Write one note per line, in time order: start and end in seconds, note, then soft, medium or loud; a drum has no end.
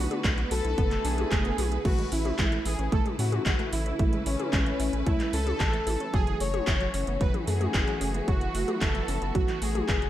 0.00 1.81 D3 medium
0.00 1.81 A3 medium
0.00 1.81 B3 medium
0.00 0.21 F#4 loud
0.00 1.81 F#4 medium
0.00 3.95 B4 medium
0.11 0.23 D4 medium
0.11 closed hi-hat soft
0.11 high tom medium
0.24 0.45 B1 medium
0.24 0.32 A3 loud
0.24 kick loud
0.24 clap loud
0.24 closed hi-hat medium
0.38 0.46 B3 medium
0.38 closed hi-hat soft
0.51 0.61 B1 loud
0.51 0.63 F#4 medium
0.51 1.34 A4 loud
0.51 open hi-hat loud
0.65 0.75 B1 medium
0.65 0.72 E4 medium
0.65 closed hi-hat soft
0.78 0.98 F#1 medium
0.78 0.90 B3 loud
0.78 kick loud
0.78 closed hi-hat medium
0.78 swell medium
0.91 1.03 A3 medium
0.91 clap soft
0.91 closed hi-hat soft
1.05 1.25 B1 medium
1.05 1.09 D4 medium
1.05 1.87 G#4 loud
1.05 open hi-hat loud
1.18 1.30 D4 medium
1.18 closed hi-hat soft
1.18 high tom medium
1.31 1.52 F#1 loud
1.31 1.39 A3 loud
1.31 kick loud
1.31 clap loud
1.31 closed hi-hat medium
1.45 1.53 B3 medium
1.45 closed hi-hat soft
1.58 1.79 B1 loud
1.58 1.70 F#4 medium
1.58 open hi-hat loud
1.58 high tom medium
1.72 1.80 E4 medium
1.72 closed hi-hat soft
1.85 2.05 A1 loud
1.85 6.10 C#3 medium
1.85 6.10 E3 medium
1.85 1.97 A3 loud
1.85 6.10 A3 medium
1.85 6.10 E4 medium
1.85 2.10 F#4 loud
1.85 kick loud
1.85 closed hi-hat medium
1.85 crash medium
1.98 2.10 G#3 medium
1.98 closed hi-hat soft
2.12 2.32 A1 medium
2.12 2.17 C#4 medium
2.12 2.67 E4 loud
2.12 open hi-hat loud
2.25 2.37 C#4 medium
2.25 closed hi-hat soft
2.25 high tom medium
2.39 2.59 A1 loud
2.39 2.47 G#3 loud
2.39 kick loud
2.39 clap loud
2.39 closed hi-hat medium
2.52 2.60 A3 medium
2.52 closed hi-hat soft
2.65 2.76 A1 loud
2.65 2.77 E4 medium
2.65 2.93 G#4 loud
2.65 open hi-hat loud
2.79 2.89 A1 loud
2.79 2.87 C#4 medium
2.79 closed hi-hat soft
2.92 3.02 A1 loud
2.92 3.04 A3 loud
2.92 3.05 A4 loud
2.92 kick loud
2.92 closed hi-hat medium
3.06 3.17 G#3 medium
3.06 closed hi-hat soft
3.06 high tom medium
3.19 3.39 A2 loud
3.19 3.24 C#4 medium
3.19 3.69 F#4 loud
3.19 open hi-hat loud
3.32 3.44 C#4 medium
3.32 closed hi-hat soft
3.32 high tom medium
3.46 3.56 A1 medium
3.46 3.54 G#3 loud
3.46 kick loud
3.46 clap loud
3.46 closed hi-hat medium
3.59 3.67 A3 medium
3.59 closed hi-hat soft
3.73 3.93 A1 medium
3.73 3.84 E4 medium
3.73 4.28 E4 loud
3.73 open hi-hat loud
3.86 3.94 C#4 medium
3.86 closed hi-hat soft
3.99 4.20 A1 medium
3.99 4.11 A3 loud
3.99 6.12 B4 medium
3.99 kick loud
3.99 closed hi-hat medium
4.13 4.25 G#3 medium
4.13 closed hi-hat soft
4.26 4.36 A1 loud
4.26 5.09 C#4 loud
4.26 4.31 C#4 medium
4.26 open hi-hat loud
4.40 4.51 C#4 medium
4.40 closed hi-hat soft
4.40 high tom medium
4.53 4.73 A1 medium
4.53 4.61 G#3 loud
4.53 kick loud
4.53 clap loud
4.53 closed hi-hat medium
4.66 4.74 A3 medium
4.66 closed hi-hat soft
4.80 4.90 A1 loud
4.80 4.92 E4 medium
4.80 open hi-hat loud
4.93 5.03 A1 medium
4.93 5.01 C#4 medium
4.93 closed hi-hat soft
5.07 5.17 C#2 loud
5.07 5.18 A3 loud
5.07 5.34 E4 loud
5.07 kick loud
5.07 closed hi-hat medium
5.20 5.32 G#3 medium
5.20 clap soft
5.20 closed hi-hat soft
5.33 5.54 C#2 medium
5.33 5.38 C#4 medium
5.33 6.16 A4 loud
5.33 open hi-hat loud
5.47 5.58 C#4 medium
5.47 closed hi-hat soft
5.47 high tom medium
5.60 5.80 A1 medium
5.60 5.68 G#3 loud
5.60 kick loud
5.60 clap loud
5.60 closed hi-hat medium
5.73 5.81 A3 medium
5.73 closed hi-hat soft
5.87 5.97 A1 loud
5.87 5.99 E4 medium
5.87 open hi-hat loud
5.87 high tom medium
6.00 6.08 C#4 medium
6.00 closed hi-hat soft
6.13 6.34 F#1 loud
6.13 10.10 E3 medium
6.13 6.25 F#3 loud
6.13 10.10 F#3 medium
6.13 10.10 A3 medium
6.13 8.26 C#4 medium
6.13 10.10 F#4 medium
6.13 6.38 G#4 loud
6.13 kick loud
6.13 closed hi-hat medium
6.27 6.39 E3 medium
6.27 closed hi-hat soft
6.40 6.61 F#1 medium
6.40 6.45 A3 medium
6.40 7.23 C#5 loud
6.40 open hi-hat loud
6.54 6.66 A3 medium
6.54 closed hi-hat soft
6.54 high tom medium
6.67 6.87 F#1 loud
6.67 6.75 E3 loud
6.67 kick loud
6.67 clap loud
6.67 closed hi-hat medium
6.81 6.88 F#3 medium
6.81 closed hi-hat soft
6.94 7.04 F#1 loud
6.94 7.06 C#4 medium
6.94 open hi-hat loud
7.07 7.18 F#1 loud
7.07 7.15 B3 medium
7.07 closed hi-hat soft
7.21 7.31 F#1 medium
7.21 7.33 F#3 loud
7.21 7.33 B4 loud
7.21 kick loud
7.21 closed hi-hat medium
7.34 7.46 E3 medium
7.34 closed hi-hat soft
7.34 high tom medium
7.47 7.68 F#2 loud
7.47 7.52 A3 medium
7.47 8.30 G#4 loud
7.47 open hi-hat loud
7.61 7.73 A3 medium
7.61 closed hi-hat soft
7.61 high tom medium
7.74 7.84 F#1 medium
7.74 7.82 E3 loud
7.74 kick loud
7.74 clap loud
7.74 closed hi-hat medium
7.88 7.96 F#3 medium
7.88 closed hi-hat soft
8.01 8.21 F#1 medium
8.01 8.13 C#4 medium
8.01 open hi-hat loud
8.14 8.22 B3 medium
8.14 closed hi-hat soft
8.28 8.48 F#1 medium
8.28 8.40 F#3 loud
8.28 10.10 B3 medium
8.28 8.83 F#4 loud
8.28 kick loud
8.28 closed hi-hat medium
8.41 8.53 E3 medium
8.41 closed hi-hat soft
8.55 8.65 F#1 loud
8.55 8.59 A3 medium
8.55 open hi-hat loud
8.68 8.80 A3 medium
8.68 closed hi-hat soft
8.68 high tom medium
8.81 9.02 F#1 medium
8.81 8.89 E3 loud
8.81 9.37 A4 loud
8.81 kick loud
8.81 clap loud
8.81 closed hi-hat medium
8.95 9.03 F#3 medium
8.95 closed hi-hat soft
9.08 9.18 F#1 loud
9.08 9.20 C#4 medium
9.08 open hi-hat loud
9.22 9.32 F#1 medium
9.22 9.30 B3 medium
9.22 closed hi-hat soft
9.35 9.45 A1 loud
9.35 9.47 F#3 loud
9.35 9.63 F#4 loud
9.35 kick loud
9.35 closed hi-hat medium
9.48 9.60 E3 medium
9.48 clap soft
9.48 closed hi-hat soft
9.62 9.82 A1 medium
9.62 9.67 A3 medium
9.62 10.10 G#4 loud
9.62 open hi-hat loud
9.75 9.87 A3 medium
9.75 closed hi-hat soft
9.75 high tom medium
9.89 10.09 F#1 medium
9.89 9.97 E3 loud
9.89 kick loud
9.89 clap loud
9.89 closed hi-hat medium
10.02 10.10 F#3 medium
10.02 closed hi-hat soft